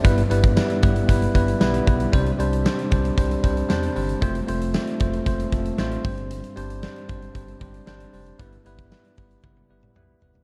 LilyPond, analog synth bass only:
\new Staff \with { instrumentName = "Analog synth bass" } { \clef bass \time 4/4 \key e \phrygian \tempo 4 = 115 g,,8 g,,8. r16 g,,8 g,,8 g,,8 b,,8 b,,8 | c,8 c,8. r16 c,8 c,8 c,8 e,8 g,,8 | f,,8 f,,8. r16 f,,8 f,,8 f,,8 a,,8 g,,8~ | g,,8 g,,8. r16 g,,8 g,,8 g,,8 g,,8 f,,8 |
g,,8 g,,8. r16 g,,8 g,,8 g,,8 b,,8 f,,8 | }